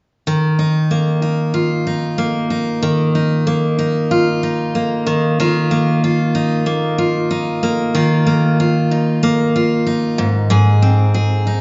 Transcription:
0.27 2.82 D#3 medium
0.59 1.22 D#4 soft
0.91 2.18 A#3 medium
1.22 1.86 D#4 soft
1.54 4.11 F4 medium
1.87 2.50 D#4 soft
2.18 3.46 A#3 medium
2.50 3.15 D#4 soft
2.83 5.06 D#3 medium
3.15 3.78 D#4 soft
3.47 4.75 A#3 medium
3.79 4.43 D#4 soft
4.11 5.40 F4 medium
4.43 5.43 D#4 medium
4.75 5.71 A#3 soft
5.07 5.39 D#3 medium
5.40 7.94 D#3 medium
5.40 6.03 F4 medium
5.71 6.65 A#3 soft
6.04 6.97 F4 medium
6.35 7.30 D#4 soft
6.66 7.62 A#3 medium
6.98 7.94 F4 medium
7.31 8.91 D#4 soft
7.63 8.25 A#3 soft
7.95 11.45 D#3 medium
7.95 8.59 F4 medium
8.27 9.22 A#3 soft
8.60 9.54 F4 medium
8.91 9.86 D#4 soft
9.23 10.25 A#3 medium
9.56 10.26 F4 medium
9.87 11.46 D#4 medium
10.18 10.49 G#2 medium
10.50 11.61 G#2 medium
10.50 11.14 G#4 medium
10.82 11.61 C4 medium
11.14 11.61 G#4 medium
11.47 11.61 D#4 soft

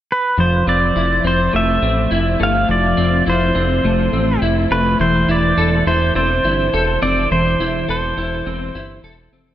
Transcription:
0.12 0.40 B4 medium
0.38 0.63 F1 loud
0.38 2.67 F3 medium
0.38 0.69 C5 medium
0.67 0.92 F1 loud
0.67 1.24 C4 medium
0.67 1.27 D5 medium
0.96 1.21 F1 loud
0.96 2.11 E4 medium
1.24 1.50 F1 loud
1.24 1.82 C4 medium
1.24 1.56 C5 medium
1.53 1.79 F1 loud
1.53 2.39 A3 medium
1.53 2.43 E5 loud
1.82 2.08 A1 medium
1.82 2.97 C4 medium
2.11 2.37 F1 loud
2.11 3.26 E4 medium
2.40 2.65 G1 medium
2.40 3.84 A3 medium
2.40 2.71 F5 loud
2.68 2.94 F1 loud
2.68 4.99 F3 medium
2.68 3.24 D5 loud
2.97 3.23 F1 medium
2.97 3.55 C4 medium
3.26 3.52 F1 loud
3.26 4.42 E4 medium
3.26 4.39 C5 medium
3.55 3.81 F1 loud
3.55 4.13 C4 medium
3.84 4.09 F1 loud
3.84 4.70 A3 medium
4.12 4.38 A1 medium
4.12 6.15 C4 medium
4.42 4.67 F1 loud
4.42 5.28 E4 medium
4.71 4.96 F1 medium
4.71 8.21 A3 medium
4.71 4.98 B4 medium
5.00 5.25 E1 loud
5.00 7.31 E3 medium
5.00 5.30 C5 loud
5.28 5.54 E1 medium
5.28 5.87 E4 medium
5.28 5.87 D5 loud
5.58 5.83 E1 loud
5.58 6.73 A4 medium
5.86 6.12 E1 loud
5.86 6.44 E4 medium
5.86 6.15 C5 medium
6.15 6.40 E1 loud
6.15 7.01 C4 medium
6.15 7.02 C5 medium
6.44 6.69 G1 medium
6.44 7.60 E4 medium
6.73 6.98 E1 loud
6.73 7.88 A4 medium
7.02 7.27 F1 medium
7.02 8.46 C4 medium
7.02 7.32 D5 medium
7.31 7.56 E1 loud
7.31 9.55 E3 medium
7.31 7.89 C5 loud
7.59 7.85 E1 medium
7.59 8.17 E4 medium
7.88 8.14 E1 loud
7.88 9.04 A4 medium
7.88 9.01 C5 medium
8.17 8.42 E1 loud
8.17 8.75 E4 medium
8.46 8.71 E1 loud
8.46 9.32 C4 medium
8.75 9.00 G1 medium
8.75 9.55 E4 medium
9.03 9.29 E1 loud
9.03 9.55 A4 medium
9.32 9.55 F1 medium
9.32 9.55 C4 medium

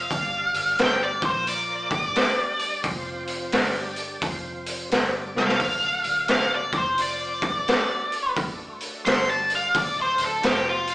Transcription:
0.00 0.10 F3 medium
0.00 0.10 C4 medium
0.00 0.78 F5 loud
0.11 0.52 G1 medium
0.11 1.22 G3 medium
0.11 1.22 D4 medium
0.11 1.22 G4 medium
0.11 1.22 D5 medium
0.11 kick loud
0.11 open hi-hat medium
0.54 0.78 G1 medium
0.54 open hi-hat medium
0.79 1.20 G1 medium
0.79 1.03 G5 medium
0.79 snare loud
0.79 open hi-hat medium
1.03 1.24 D5 loud
1.20 1.88 A#1 medium
1.20 1.89 F3 medium
1.20 1.90 A#3 medium
1.20 1.90 F4 medium
1.20 1.90 A#4 medium
1.20 kick loud
1.20 open hi-hat soft
1.25 1.47 C5 medium
1.47 2.82 D5 loud
1.47 open hi-hat medium
1.89 2.15 G1 medium
1.89 2.83 G3 medium
1.89 2.84 D4 medium
1.89 2.84 G4 medium
1.89 2.83 D5 medium
1.89 kick loud
1.89 open hi-hat medium
2.16 snare medium
2.16 open hi-hat medium
2.59 open hi-hat soft
2.83 3.50 F1 medium
2.83 3.53 F3 medium
2.83 3.52 C4 medium
2.83 3.52 F4 medium
2.83 3.52 C5 medium
2.83 kick medium
2.83 open hi-hat medium
3.27 open hi-hat medium
3.52 4.19 G1 medium
3.52 4.22 G3 medium
3.52 4.22 D4 medium
3.52 4.22 G4 medium
3.52 4.22 D5 medium
3.52 snare loud
3.52 open hi-hat medium
3.96 open hi-hat medium
4.21 4.88 F1 medium
4.21 4.90 F3 medium
4.21 4.91 C4 medium
4.21 4.91 F4 medium
4.21 4.90 C5 medium
4.21 kick loud
4.21 open hi-hat medium
4.66 open hi-hat medium
4.89 5.32 G1 medium
4.89 5.59 G3 medium
4.89 5.57 D4 medium
4.89 5.59 G4 medium
4.89 5.59 D5 medium
4.89 snare loud
4.89 open hi-hat medium
5.35 5.59 C2 medium
5.35 6.27 F5 loud
5.35 snare medium
5.49 snare medium
5.59 6.01 D1 medium
5.59 6.72 A3 medium
5.59 6.71 D4 medium
5.59 6.72 F#4 medium
5.59 6.72 A4 medium
5.59 kick medium
5.59 open hi-hat medium
6.04 6.28 D1 medium
6.04 open hi-hat soft
6.28 6.71 D1 medium
6.28 6.53 F5 medium
6.28 snare loud
6.28 open hi-hat medium
6.55 6.77 D5 medium
6.72 7.38 F1 medium
6.72 7.42 F3 medium
6.72 7.42 C4 medium
6.72 7.42 F4 medium
6.72 7.42 C5 medium
6.72 kick loud
6.72 open hi-hat medium
6.78 6.99 C5 medium
6.98 8.34 D5 loud
6.98 open hi-hat medium
7.42 7.66 D1 medium
7.42 9.04 A3 medium
7.42 9.05 D4 medium
7.42 9.05 F#4 medium
7.42 9.05 A4 medium
7.42 kick loud
7.42 open hi-hat medium
7.68 snare loud
7.68 open hi-hat medium
8.12 open hi-hat soft
8.36 kick loud
8.36 open hi-hat medium
8.80 open hi-hat medium
9.05 9.71 G1 medium
9.05 9.74 G3 medium
9.05 9.74 D4 medium
9.05 9.75 G4 medium
9.05 9.75 D5 medium
9.05 9.28 C6 loud
9.05 snare loud
9.05 open hi-hat medium
9.29 9.51 A5 medium
9.50 open hi-hat medium
9.55 9.76 F5 medium
9.75 10.15 D1 medium
9.75 10.43 A3 medium
9.75 10.43 D4 medium
9.75 10.43 F#4 medium
9.75 10.44 A4 medium
9.75 9.98 D5 loud
9.75 kick loud
9.75 open hi-hat medium
10.01 10.22 C5 medium
10.18 10.42 D1 medium
10.18 open hi-hat medium
10.25 10.45 A4 medium
10.43 10.95 F1 medium
10.43 10.95 F3 medium
10.43 10.95 C4 medium
10.43 10.95 F4 medium
10.43 10.95 C5 medium
10.43 snare loud
10.43 open hi-hat medium
10.47 10.68 G4 loud
10.69 10.95 F4 loud
10.87 open hi-hat medium

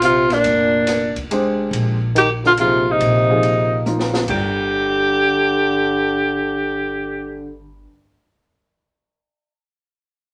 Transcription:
0.00 0.41 A#1 medium
0.00 0.33 C3 medium
0.00 hi-hat pedal medium
0.00 ride medium
0.05 0.35 F4 medium
0.30 1.16 A#2 medium
0.30 1.17 D4 medium
0.30 snare soft
0.30 ride soft
0.44 1.69 F1 medium
0.44 ride medium
0.87 snare soft
0.87 hi-hat pedal medium
0.87 ride medium
1.16 kick soft
1.16 ride soft
1.31 1.96 G#3 medium
1.31 1.96 D4 medium
1.31 1.96 G4 medium
1.31 1.97 C5 medium
1.31 ride medium
1.71 2.96 A#1 medium
1.71 ride medium
2.15 2.28 D#3 medium
2.15 2.30 G4 medium
2.15 hi-hat pedal soft
2.15 ride medium
2.44 2.51 D3 medium
2.44 2.52 F4 medium
2.44 snare soft
2.57 2.87 C3 medium
2.57 3.23 F3 medium
2.57 3.24 A#3 medium
2.57 3.24 D#4 medium
2.57 2.93 F4 medium
2.57 3.24 G#4 medium
2.57 hi-hat pedal soft
2.57 ride medium
2.87 3.86 C3 medium
2.91 3.88 D#4 medium
2.99 4.24 A#1 medium
2.99 ride medium
3.29 3.83 F3 medium
3.29 3.83 A#3 medium
3.29 3.83 D#4 medium
3.29 3.84 G#4 medium
3.43 ride soft
3.86 4.28 F3 medium
3.86 4.28 A#3 medium
3.86 4.29 D#4 medium
3.86 4.29 F4 medium
3.86 hi-hat pedal soft
3.86 high tom soft
3.99 snare soft
4.14 snare medium
4.28 7.84 G1 medium
4.28 7.88 G2 medium
4.28 7.60 D3 medium
4.28 7.89 G3 medium
4.28 7.90 D4 medium
4.28 7.61 G4 medium
4.28 7.90 A#4 soft
4.28 7.91 D5 medium
4.28 kick soft
4.28 crash medium

